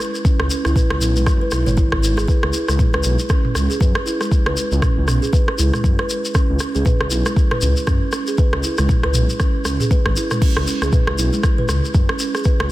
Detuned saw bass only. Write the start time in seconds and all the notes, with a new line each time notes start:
0.40 C#2
0.65 C#2
0.91 C#2
1.01 B1
1.27 F#2
1.52 B1
1.66 G#1
2.43 C#2
2.68 C#2
2.94 C#2
3.05 B1
3.55 C#2
3.81 F#2
4.46 C#2
4.71 C#2
4.97 C#2
5.08 B1
5.59 C#2
5.84 F#2
6.50 C#2
6.75 C#2
7.01 C#2
7.12 B1
7.62 C#2
7.87 F#2
8.53 C#2
8.78 C#2
9.04 C#2
9.15 B1
9.65 C#2
10.06 G#1
10.57 C#2
10.82 C#2
11.07 C#2
11.18 B1
11.69 C#2
11.95 F#2
12.60 C#2